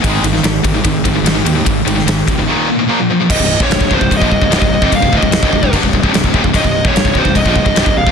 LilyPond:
<<
  \new Staff \with { instrumentName = "Lead electric guitar" } { \time 4/4 \key c \phrygian \tempo 4 = 148 r1 | r1 | ees''8. des''8. c''8 ees''4 ees''4 | f''8 ees''4. r2 |
ees''8. des''8. c''8 ees''4. f''8 | }
  \new Staff \with { instrumentName = "Distorted electric guitar" } { \clef bass \time 4/4 \key c \phrygian <aes, ees aes>8 <aes, ees>16 <aes, ees>16 <aes, ees>8 <aes, ees>16 <aes, ees>16 <aes, ees>8 <aes, ees>16 <aes, ees>16 <aes, ees>16 <aes, ees>16 <aes, ees>16 <aes, ees>16 | <aes, ees>8 <aes, ees>16 <aes, ees>16 <aes, ees>8 <aes, ees>16 <aes, ees>16 <ees, bes, ees>8 <ees, bes,>16 <ees, bes,>16 <bes, f bes>16 <bes, f>16 <bes, f>16 <bes, f>16 | <c, g,>16 <c, g,>8 <ees, bes,>16 <c, g,>16 <c, g,>16 <c, g,>16 <c, g,>16 <c, g,>16 <bes, f>16 <c, g,>16 <c, g,>16 <c, g,>16 <c, g,>8 <f, c>16 | <c, g,>16 <c, g,>16 <d, a,>16 <c, g,>8 <c, g,>16 <c, g,>16 <c, g,>16 <g, d>16 <c, g,>16 <c, g,>16 <c, g,>16 <c, g,>16 <c, g,>16 <ees, bes,>16 <c, g,>16 |
<c, g,>16 <c, g,>8 <ees, bes,>16 <c, g,>16 <c, g,>16 <c, g,>16 <c, g,>16 <c, g,>16 <bes, f>16 <c, g,>16 <c, g,>16 <c, g,>16 <c, g,>8 <f, c>16 | }
  \new Staff \with { instrumentName = "Distorted electric guitar" } { \clef bass \time 4/4 \key c \phrygian <aes, ees aes>8 <aes, ees>16 <aes, ees>16 <aes, ees>8 <aes, ees>16 <aes, ees>16 <aes, ees>8 <aes, ees>16 <aes, ees>16 <aes, ees>16 <aes, ees>16 <aes, ees>16 <aes, ees>16 | <aes, ees>8 <aes, ees>16 <aes, ees>16 <aes, ees>8 <aes, ees>16 <aes, ees>16 <ees, bes, ees>8 <ees, bes,>16 <ees, bes,>16 <bes, f bes>16 <bes, f>16 <bes, f>16 <bes, f>16 | <c, g,>16 <c, g,>8 <ees, bes,>16 <c, g,>16 <c, g,>16 <c, g,>16 <c, g,>16 <c, g,>16 <bes, f>16 <c, g,>16 <c, g,>16 <c, g,>16 <c, g,>8 <f, c>16 | <c, g,>16 <c, g,>16 <d, a,>16 <c, g,>8 <c, g,>16 <c, g,>16 <c, g,>16 <g, d>16 <c, g,>16 <c, g,>16 <c, g,>16 <c, g,>16 <c, g,>16 <ees, bes,>16 <c, g,>16 |
<c, g,>16 <c, g,>8 <ees, bes,>16 <c, g,>16 <c, g,>16 <c, g,>16 <c, g,>16 <c, g,>16 <bes, f>16 <c, g,>16 <c, g,>16 <c, g,>16 <c, g,>8 <f, c>16 | }
  \new Staff \with { instrumentName = "Fingered electric bass" } { \clef bass \time 4/4 \key c \phrygian aes,,8 aes,,8 aes,,8 aes,,8 aes,,8 aes,,8 aes,,8 ees,8 | aes,,8 aes,,8 aes,,8 des,,8 r2 | c,,16 c,,8 ees,,16 c,,16 c,,16 c,,16 c,,16 c,,16 bes,,16 c,,16 c,,16 c,,16 c,,8 f,,16 | c,,16 c,,16 d,,16 c,,8 c,,16 c,,16 c,,16 g,,16 c,,16 c,,16 c,,16 c,,16 c,,16 ees,,16 c,,16 |
c,,16 c,,8 ees,,16 c,,16 c,,16 c,,16 c,,16 c,,16 bes,,16 c,,16 c,,16 c,,16 c,,8 f,,16 | }
  \new DrumStaff \with { instrumentName = "Drums" } \drummode { \time 4/4 <bd cymr>8 cymr16 sn16 <cymr sn>8 <bd cymr>8 <bd cymr>8 <bd cymr>8 <cymr sn>8 cymr8 | <bd cymr>8 cymr16 sn16 <cymr sn>8 <bd cymr>8 r4 r4 | <cymc bd>16 bd8 bd16 <cymc sn>16 <bd sn>16 bd16 bd16 <cymc bd>16 bd16 bd16 bd16 <cymc sn>16 bd8 bd16 | <cymc bd>16 bd16 bd16 bd16 <cymc sn>16 bd16 bd16 bd16 <cymc bd>16 bd16 bd16 bd16 <cymc sn>16 bd16 bd16 bd16 |
<cymc bd>16 bd8 bd16 <cymc sn>16 bd16 bd16 bd16 <cymc bd>16 bd16 bd16 bd16 <cymc sn>16 bd8 bd16 | }
>>